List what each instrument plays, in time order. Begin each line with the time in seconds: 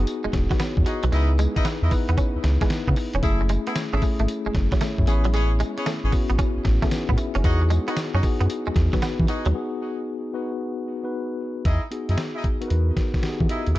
Already playing: tine electric piano B3 D#4 F#4 G#4
0.07 closed hi-hat, tambourine
0.24 analog synth bass E1, clean electric guitar G#3
0.33 analog synth bass E1, muted clean electric guitar stroke, kick, snare, closed hi-hat
0.50 clean electric guitar F#3, tine electric piano B3 D#4 F#4 B4, kick, snare, closed hi-hat
0.60 clean electric guitar B3, tine electric piano E4 C#5, snare, closed hi-hat, tambourine
0.77 analog synth bass E2, tine electric piano F#4 D#5, kick
0.86 horn section D#4 F#4 G#4 D#5, muted clean electric guitar stroke, closed hi-hat, tambourine
1.03 analog synth bass B1, clean electric guitar F#3, tine electric piano D#4 B4, closed hi-hat
1.12 analog synth bass C#2, clean electric guitar G#3, tine electric piano B3 D#4 E4 G#4, horn section D#4 E4 B4 D#5, closed hi-hat, tambourine
1.39 clean electric guitar G#3, closed hi-hat, tambourine
1.56 horn section D#4 E4 B4 D#5, muted clean electric guitar stroke, kick, closed hi-hat
1.65 clean electric guitar B3, snare, closed hi-hat, tambourine
1.82 analog synth bass E2, horn section D#4 E4 B4 D#5
1.91 tine electric piano B3 D#4 E4 B4, muted clean electric guitar stroke, kick, open hi-hat, tambourine
2.09 analog synth bass E2, clean electric guitar B3, closed hi-hat
2.17 clean electric guitar C#4, kick, closed hi-hat, tambourine
2.35 analog synth bass C#2
2.44 analog synth bass C#2, muted clean electric guitar stroke, snare, closed hi-hat
2.61 clean electric guitar G#3, tine electric piano B3 D#4 E4 B4, kick, snare, closed hi-hat
2.70 snare, closed hi-hat, tambourine
2.88 analog synth bass C#3, clean electric guitar B3, kick
2.96 muted clean electric guitar stroke, open hi-hat, tambourine
3.13 analog synth bass E1, clean electric guitar C#4, closed hi-hat
3.22 analog synth bass F#1, tine electric piano A3 C#4 E4 G#4, horn section E4 G#4 A4 E5, kick, closed hi-hat, tambourine
3.41 muted clean electric guitar stroke
3.49 clean electric guitar G#3, closed hi-hat, tambourine
3.67 clean electric guitar B3, horn section E4 G#4 A4 E5, closed hi-hat
3.76 snare, closed hi-hat, tambourine
3.93 analog synth bass G#1, clean electric guitar C#4, horn section E4 G#4 A4 E5
4.01 tine electric piano A3 C#4 E4 G#4, muted clean electric guitar stroke, kick, open hi-hat, tambourine
4.19 analog synth bass G#1, clean electric guitar A3, closed hi-hat
4.28 closed hi-hat, tambourine
4.46 analog synth bass F#1, clean electric guitar G#3
4.55 analog synth bass F#1, muted clean electric guitar stroke, kick, snare, closed hi-hat
4.72 clean electric guitar F#3, tine electric piano G#4 E5, kick, snare, closed hi-hat
4.81 clean electric guitar A3, tine electric piano E4 C#5, snare, closed hi-hat, tambourine
4.98 analog synth bass F#2, tine electric piano E4 C#5, kick
5.07 analog synth bass A1, tine electric piano B3 C#4 E4 G#4, horn section C#4 G#4 B4 C#5, muted clean electric guitar stroke, closed hi-hat, tambourine
5.24 clean electric guitar F#3, closed hi-hat
5.33 clean electric guitar G#3, horn section C#4 G#4 B4 C#5, closed hi-hat, tambourine
5.60 clean electric guitar G#3, closed hi-hat, tambourine
5.77 horn section C#4 G#4 B4 C#5, muted clean electric guitar stroke, closed hi-hat
5.86 clean electric guitar A3, snare, closed hi-hat, tambourine
6.03 analog synth bass G#1, horn section C#4 G#4 B4 C#5
6.12 tine electric piano B3 C#4 E4 F#4, muted clean electric guitar stroke, kick, open hi-hat, tambourine
6.30 analog synth bass A1, clean electric guitar B3, closed hi-hat
6.39 clean electric guitar C#4, kick, closed hi-hat, tambourine
6.56 analog synth bass A1
6.65 analog synth bass A1, muted clean electric guitar stroke, kick, snare, closed hi-hat
6.82 clean electric guitar A3, tine electric piano B3 C#4 E4 G#4, kick, snare, closed hi-hat
6.91 tine electric piano D#4 B4, snare, closed hi-hat, tambourine
7.09 analog synth bass A2, clean electric guitar B3, kick
7.18 tine electric piano G#4 E5, muted clean electric guitar stroke, closed hi-hat, tambourine
7.35 analog synth bass F#1, clean electric guitar C#4, tine electric piano E4 C#5, closed hi-hat
7.44 analog synth bass E2, tine electric piano B3 D#4 F#4 G#4, horn section D#4 F#4 G#4 D#5, kick, closed hi-hat, tambourine
7.62 muted clean electric guitar stroke
7.70 clean electric guitar G#3, closed hi-hat, tambourine
7.88 clean electric guitar B3, horn section D#4 F#4 G#4 D#5, closed hi-hat
7.97 snare, closed hi-hat, tambourine
8.14 analog synth bass F#2, clean electric guitar C#4, horn section D#4 F#4 G#4 D#5
8.23 tine electric piano B3 D#4 F#4 G#4, muted clean electric guitar stroke, kick, open hi-hat, tambourine
8.41 analog synth bass F#2, clean electric guitar B3, closed hi-hat
8.50 closed hi-hat, tambourine
8.67 analog synth bass E2, clean electric guitar G#3
8.76 analog synth bass E2, muted clean electric guitar stroke, kick, snare, closed hi-hat
8.93 clean electric guitar F#3, tine electric piano B3 D#4 F#4 B4, kick, snare, closed hi-hat
9.02 clean electric guitar B3, snare, closed hi-hat, tambourine
9.20 analog synth bass E3, kick
9.28 horn section D#4 F#4 G#4 D#5, muted clean electric guitar stroke, closed hi-hat, tambourine
9.46 analog synth bass D#2, clean electric guitar F#3, closed hi-hat
9.54 tine electric piano B3 D#4 F#4 G#4
10.33 tine electric piano B3 D#4 F#4 B4
11.03 tine electric piano B3 D#4 F#4 B4
11.65 analog synth bass E2, horn section D#4 E4 G#4 D#5, kick, closed hi-hat
11.91 tine electric piano B3 D#4 F#4 G#4, closed hi-hat
12.09 analog synth bass F#2, horn section D#4 E4 G#4 D#5, closed hi-hat
12.18 snare, closed hi-hat
12.35 horn section D#4 E4 G#4 D#5
12.44 kick, closed hi-hat
12.61 tine electric piano B3 D#4 F#4 A#4, closed hi-hat
12.68 analog synth bass E2, tine electric piano B4, closed hi-hat
12.97 kick, snare, closed hi-hat
13.14 kick, snare, closed hi-hat
13.22 tine electric piano B3 D#4 F#4 G4, snare, closed hi-hat
13.30 tine electric piano G#4
13.40 analog synth bass E3, kick
13.49 horn section D#4 E4 G#4 D#5, closed hi-hat
13.67 analog synth bass D#2, closed hi-hat
13.75 horn section E4